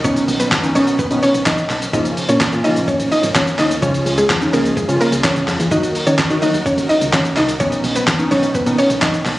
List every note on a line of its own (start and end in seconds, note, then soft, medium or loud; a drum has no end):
0.00 1.90 D#3 medium
0.00 downlifter medium
0.04 0.22 B1 loud
0.04 0.34 D#3 medium
0.04 0.34 F#3 medium
0.04 1.91 B3 medium
0.04 0.34 B3 medium
0.04 1.91 C#4 loud
0.04 0.34 C#4 medium
0.04 0.24 C#4 medium
0.04 0.34 D#4 medium
0.04 0.24 C#5 loud
0.04 kick loud
0.04 shaker medium
0.16 closed hi-hat medium
0.16 shaker medium
0.28 0.45 B1 loud
0.28 open hi-hat medium
0.28 shaker medium
0.40 0.50 B3 medium
0.40 0.49 B4 medium
0.40 closed hi-hat medium
0.40 shaker medium
0.52 0.69 D#2 medium
0.52 kick loud
0.52 snare medium
0.52 clap loud
0.52 shaker medium
0.63 0.69 C#4 medium
0.63 0.69 D#4 medium
0.63 closed hi-hat soft
0.63 shaker soft
0.75 0.93 B1 loud
0.75 0.93 D#3 medium
0.75 0.93 F#3 medium
0.75 0.93 B3 medium
0.75 0.93 C#4 medium
0.75 0.95 C#4 medium
0.75 0.93 D#4 medium
0.75 0.95 C#5 medium
0.75 open hi-hat medium
0.75 shaker medium
0.87 closed hi-hat medium
0.87 shaker medium
0.99 1.04 B2 soft
0.99 1.19 B3 medium
0.99 1.18 B4 medium
0.99 kick loud
0.99 shaker medium
1.11 1.19 B2 medium
1.11 1.52 D#3 medium
1.11 1.52 F#3 medium
1.11 1.52 B3 medium
1.11 1.52 C#4 medium
1.11 1.52 D#4 medium
1.11 closed hi-hat medium
1.11 shaker medium
1.23 1.33 C#4 medium
1.23 1.32 C#5 medium
1.23 open hi-hat medium
1.23 shaker soft
1.34 1.43 B1 medium
1.34 closed hi-hat medium
1.34 shaker medium
1.46 1.64 B1 loud
1.46 1.80 D#4 medium
1.46 1.79 D#5 medium
1.46 kick loud
1.46 snare medium
1.46 clap loud
1.46 shaker medium
1.58 closed hi-hat medium
1.58 shaker medium
1.70 1.87 B1 medium
1.70 clap medium
1.70 open hi-hat medium
1.70 shaker medium
1.82 closed hi-hat medium
1.82 shaker medium
1.93 2.11 A#1 loud
1.93 2.23 C#3 medium
1.93 2.23 F3 medium
1.93 2.23 A#3 medium
1.93 2.23 C#4 medium
1.93 2.04 D#4 medium
1.93 2.23 F4 medium
1.93 2.03 D#5 loud
1.93 kick loud
1.93 shaker medium
2.05 closed hi-hat medium
2.05 shaker medium
2.17 open hi-hat medium
2.17 shaker medium
2.29 2.38 A#2 loud
2.29 2.39 C#4 medium
2.29 2.38 C#5 medium
2.29 closed hi-hat medium
2.29 shaker medium
2.41 kick loud
2.41 snare medium
2.41 clap loud
2.41 shaker medium
2.52 2.61 A#2 loud
2.52 2.58 C#4 medium
2.52 2.58 F4 medium
2.52 closed hi-hat soft
2.52 shaker soft
2.64 3.11 C#3 medium
2.64 3.11 F3 medium
2.64 3.11 A#3 medium
2.64 3.11 C#4 medium
2.64 2.84 D#4 medium
2.64 3.11 F4 medium
2.64 2.83 D#5 medium
2.64 open hi-hat medium
2.64 shaker medium
2.76 2.85 A#1 medium
2.76 closed hi-hat medium
2.76 shaker medium
2.88 3.08 C#4 medium
2.88 3.07 C#5 medium
2.88 kick loud
2.88 shaker medium
3.00 3.08 A#1 medium
3.00 closed hi-hat medium
3.00 shaker medium
3.12 3.21 D#4 medium
3.12 3.21 D#5 medium
3.12 open hi-hat medium
3.12 shaker medium
3.23 3.32 G#1 medium
3.23 closed hi-hat medium
3.23 shaker medium
3.35 3.52 A#1 loud
3.35 3.45 C#4 medium
3.35 3.45 C#5 medium
3.35 kick loud
3.35 snare loud
3.35 clap loud
3.35 shaker medium
3.47 closed hi-hat medium
3.47 shaker medium
3.59 3.76 D2 medium
3.59 3.69 D#4 medium
3.59 3.68 D#5 medium
3.59 clap medium
3.59 open hi-hat medium
3.59 shaker medium
3.71 closed hi-hat medium
3.71 shaker medium
3.82 4.00 C#2 loud
3.82 4.12 C#3 medium
3.82 5.69 C#3 medium
3.82 4.12 F3 medium
3.82 4.12 G#3 medium
3.82 4.12 C#4 medium
3.82 4.02 C#4 medium
3.82 5.69 F4 medium
3.82 4.12 F4 medium
3.82 4.02 C#5 loud
3.82 kick loud
3.82 shaker medium
3.94 closed hi-hat medium
3.94 shaker medium
4.06 4.23 C#2 loud
4.06 open hi-hat medium
4.06 shaker medium
4.18 4.28 G#3 medium
4.18 4.27 G#4 medium
4.18 closed hi-hat medium
4.18 shaker medium
4.30 4.47 F2 medium
4.30 kick loud
4.30 snare medium
4.30 clap loud
4.30 shaker medium
4.41 4.47 C#4 medium
4.41 4.47 D#4 medium
4.41 closed hi-hat soft
4.41 shaker soft
4.53 4.71 C#2 medium
4.53 4.71 C#3 medium
4.53 4.71 F3 medium
4.53 4.71 G#3 medium
4.53 4.73 A#3 medium
4.53 4.71 C#4 medium
4.53 4.71 G#4 medium
4.53 4.72 A#4 medium
4.53 open hi-hat medium
4.53 shaker medium
4.65 closed hi-hat medium
4.65 shaker medium
4.77 4.81 C#3 soft
4.77 4.97 G#3 medium
4.77 4.96 G#4 medium
4.77 kick loud
4.77 shaker medium
4.88 5.29 C#3 medium
4.88 4.97 C#3 loud
4.88 5.30 F3 medium
4.88 5.30 G#3 medium
4.88 5.30 C#4 medium
4.88 5.30 F4 medium
4.88 closed hi-hat medium
4.88 shaker medium
5.01 5.11 A#3 medium
5.01 5.10 A#4 medium
5.01 open hi-hat medium
5.01 shaker medium
5.12 5.21 C#2 medium
5.12 closed hi-hat medium
5.12 shaker medium
5.24 5.58 C#4 medium
5.24 5.58 C#5 medium
5.24 kick loud
5.24 snare loud
5.24 clap loud
5.24 shaker medium
5.36 5.45 C#2 medium
5.36 closed hi-hat medium
5.36 shaker medium
5.48 5.56 F2 loud
5.48 clap medium
5.48 open hi-hat medium
5.48 shaker medium
5.60 5.68 E2 loud
5.60 closed hi-hat medium
5.60 shaker medium
5.71 5.89 D#2 loud
5.71 6.00 D#3 medium
5.71 7.58 D#3 medium
5.71 6.01 F#3 medium
5.71 6.01 A#3 medium
5.71 7.58 D#4 medium
5.71 6.01 D#4 medium
5.71 5.81 D#4 medium
5.71 7.58 F#4 medium
5.71 6.01 F#4 medium
5.71 7.58 A#4 medium
5.71 5.81 D#5 loud
5.71 kick loud
5.71 shaker medium
5.83 closed hi-hat medium
5.83 shaker medium
5.95 open hi-hat medium
5.95 shaker medium
6.07 6.15 D#3 loud
6.07 6.17 C#4 medium
6.07 6.16 C#5 medium
6.07 closed hi-hat medium
6.07 shaker medium
6.19 kick loud
6.19 snare medium
6.19 clap loud
6.19 shaker medium
6.30 6.39 D#3 loud
6.30 6.36 D#4 medium
6.30 6.36 F#4 medium
6.30 closed hi-hat soft
6.30 shaker soft
6.42 6.89 D#3 medium
6.42 6.89 F#3 medium
6.42 6.89 A#3 medium
6.42 6.89 D#4 medium
6.42 6.62 D#4 medium
6.42 6.89 F#4 medium
6.42 6.61 D#5 medium
6.42 open hi-hat medium
6.42 shaker medium
6.54 6.63 D#2 medium
6.54 closed hi-hat medium
6.54 shaker medium
6.66 6.86 C#4 medium
6.66 6.85 C#5 medium
6.66 kick loud
6.66 shaker medium
6.78 6.86 D#2 loud
6.78 closed hi-hat medium
6.78 shaker medium
6.89 7.00 D#4 medium
6.89 6.99 D#5 medium
6.89 open hi-hat medium
6.89 shaker medium
7.01 7.10 C#2 medium
7.01 closed hi-hat medium
7.01 shaker medium
7.13 7.30 D#2 loud
7.13 7.23 C#4 medium
7.13 7.22 C#5 medium
7.13 kick loud
7.13 snare loud
7.13 clap loud
7.13 shaker medium
7.25 closed hi-hat medium
7.25 shaker medium
7.37 7.54 C2 medium
7.37 7.47 D#4 medium
7.37 7.46 D#5 medium
7.37 clap medium
7.37 open hi-hat medium
7.37 shaker medium
7.49 closed hi-hat medium
7.49 shaker medium
7.60 7.78 B1 loud
7.60 7.89 D#3 medium
7.60 9.39 D#3 medium
7.60 7.90 F#3 medium
7.60 9.39 B3 medium
7.60 7.90 B3 medium
7.60 9.39 C#4 loud
7.60 7.90 C#4 medium
7.60 7.80 C#4 medium
7.60 7.90 D#4 medium
7.60 7.79 C#5 loud
7.60 kick loud
7.60 shaker medium
7.72 closed hi-hat medium
7.72 shaker medium
7.84 8.01 B1 loud
7.84 open hi-hat medium
7.84 shaker medium
7.95 8.06 B3 medium
7.95 8.05 B4 medium
7.95 closed hi-hat medium
7.95 shaker medium
8.07 8.25 D#2 medium
8.07 kick loud
8.07 snare medium
8.07 clap loud
8.07 shaker medium
8.19 8.25 C#4 medium
8.19 8.25 D#4 medium
8.19 closed hi-hat soft
8.19 shaker soft
8.31 8.48 B1 medium
8.31 8.49 D#3 medium
8.31 8.49 F#3 medium
8.31 8.49 B3 medium
8.31 8.49 C#4 medium
8.31 8.51 C#4 medium
8.31 8.49 D#4 medium
8.31 8.50 C#5 medium
8.31 open hi-hat medium
8.31 shaker medium
8.43 closed hi-hat medium
8.43 shaker medium
8.55 8.59 B2 medium
8.55 8.75 B3 medium
8.55 8.74 B4 medium
8.55 kick loud
8.55 shaker medium
8.66 8.75 B2 medium
8.66 9.07 D#3 medium
8.66 9.07 F#3 medium
8.66 9.08 B3 medium
8.66 9.08 C#4 medium
8.66 9.08 D#4 medium
8.66 closed hi-hat medium
8.66 shaker medium
8.78 8.89 C#4 medium
8.78 8.88 C#5 medium
8.78 open hi-hat medium
8.78 shaker medium
8.90 8.99 B1 medium
8.90 closed hi-hat medium
8.90 shaker medium
9.02 9.19 B1 loud
9.02 9.36 D#4 medium
9.02 9.35 D#5 medium
9.02 kick loud
9.02 snare loud
9.02 clap loud
9.02 shaker medium
9.14 closed hi-hat medium
9.14 shaker medium
9.25 9.39 B1 loud
9.25 clap medium
9.25 open hi-hat medium
9.25 shaker medium